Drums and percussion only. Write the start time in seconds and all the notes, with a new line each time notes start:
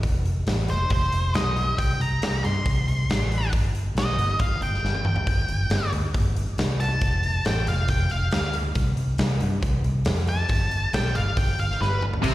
0.03 kick, open hi-hat
0.26 open hi-hat
0.47 snare, open hi-hat
0.68 open hi-hat
0.90 kick, open hi-hat
1.12 open hi-hat
1.34 snare, open hi-hat
1.57 open hi-hat
1.78 kick, open hi-hat
2.01 open hi-hat
2.22 snare, open hi-hat
2.44 open hi-hat
2.66 kick, open hi-hat
2.88 open hi-hat
3.10 snare, open hi-hat
3.32 open hi-hat
3.53 kick, open hi-hat
3.75 open hi-hat
3.97 snare, open hi-hat
4.19 open hi-hat
4.39 kick, open hi-hat
4.62 open hi-hat
4.74 snare
4.85 snare
4.95 high tom
5.05 mid tom
5.16 floor tom
5.27 kick, open hi-hat
5.48 open hi-hat
5.70 snare, open hi-hat
5.93 open hi-hat
6.14 kick, open hi-hat
6.36 open hi-hat
6.58 snare, open hi-hat
6.80 open hi-hat
7.01 kick, open hi-hat
7.23 open hi-hat
7.45 snare, open hi-hat
7.67 open hi-hat
7.88 kick, open hi-hat
8.10 open hi-hat
8.32 snare, open hi-hat
8.53 open hi-hat
8.75 kick, open hi-hat
8.97 open hi-hat
9.18 snare, open hi-hat
9.41 open hi-hat
9.63 kick, open hi-hat
9.84 open hi-hat
10.05 snare, open hi-hat
10.27 open hi-hat
10.49 kick, open hi-hat
10.71 open hi-hat
10.93 snare, open hi-hat
11.15 open hi-hat
11.37 kick, open hi-hat
11.59 open hi-hat
11.71 snare
11.82 snare
12.02 mid tom
12.13 floor tom
12.24 kick, crash